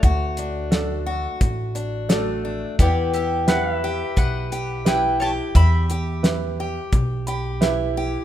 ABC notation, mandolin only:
X:1
M:4/4
L:1/8
Q:1/4=87
K:Edor
V:1 name="Mandolin"
[ca]3 z4 z | [Gd] [Ge]3 [Bf]2 [Bg] [ca] | [eb]6 z2 |]